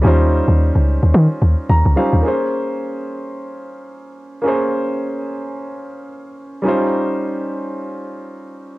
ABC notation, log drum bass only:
X:1
M:4/4
L:1/16
Q:"Swing 16ths" 1/4=109
K:Bbdor
V:1 name="Log drum bass" clef=bass
E,,3 E,,2 D,,2 E,, E, z E,, z E,, D,, z E,, | z16 | z16 | z16 |]